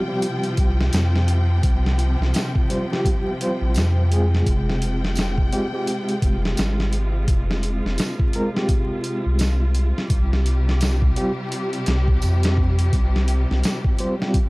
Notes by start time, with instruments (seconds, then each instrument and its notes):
Already playing: string section C3 F3 F4 G5
0.08 reed electric piano G3 C4 F4 G4
0.22 closed hi-hat
0.43 closed hi-hat
0.57 sub bass C2, kick, closed hi-hat
0.81 snare
0.93 sub bass F2, snare, closed hi-hat, tambourine
1.16 snare
1.28 closed hi-hat
1.63 sub bass C2, kick, closed hi-hat
1.86 snare
1.99 closed hi-hat
2.20 sub bass C2, snare
2.34 snare, closed hi-hat, tambourine
2.55 kick
2.70 reed electric piano G3 C4 F4 C5, closed hi-hat
2.92 reed electric piano G3 C4 F4 G4, snare
3.05 kick, closed hi-hat
3.41 reed electric piano G3 C4 F4 C5, closed hi-hat
3.61 sub bass A#1
3.74 sub bass F2, snare, closed hi-hat, tambourine
4.11 reed electric piano G#3 C4 F4 G#4, closed hi-hat
4.35 snare
4.46 sub bass F1, string section G#3 F4 G5, kick, closed hi-hat
4.70 snare
4.82 closed hi-hat
5.05 snare
5.15 snare, closed hi-hat, tambourine
5.38 kick
5.52 reed electric piano G#3 C4 F4 G4, closed hi-hat
5.73 reed electric piano G#3 C4 F4 G4
5.87 closed hi-hat
6.09 closed hi-hat
6.22 sub bass F1, kick, closed hi-hat
6.45 snare
6.57 sub bass G#1, snare, closed hi-hat, tambourine
6.80 snare
6.93 closed hi-hat
7.28 sub bass F1, kick, closed hi-hat
7.51 snare
7.63 closed hi-hat
7.85 sub bass F1, snare
7.98 snare, closed hi-hat, tambourine
8.19 kick
8.33 reed electric piano G#3 C4 F4 A#4, closed hi-hat
8.54 reed electric piano G#3 C4 F4 G4, snare
8.69 kick, closed hi-hat
9.04 closed hi-hat
9.26 sub bass C2
9.39 snare, closed hi-hat, tambourine
9.75 closed hi-hat
9.98 snare
10.10 sub bass C2, string section C3 G3 G4, kick, closed hi-hat
10.33 snare
10.46 closed hi-hat
10.69 snare
10.81 snare, closed hi-hat, tambourine
11.02 kick
11.16 reed electric piano G3 C4 F4 G4, closed hi-hat
11.52 closed hi-hat
11.73 closed hi-hat
11.86 sub bass C2, snare, closed hi-hat
12.08 kick
12.22 sub bass F2, closed hi-hat, tambourine
12.43 snare, closed hi-hat
12.57 kick
12.79 closed hi-hat
12.93 sub bass C2, kick, closed hi-hat
13.16 snare
13.28 closed hi-hat
13.51 sub bass C2, snare
13.63 snare, closed hi-hat, tambourine
13.84 kick
13.99 reed electric piano G3 C4 F4 C5, closed hi-hat
14.19 reed electric piano G3 C4 F4 G4, snare
14.34 kick, closed hi-hat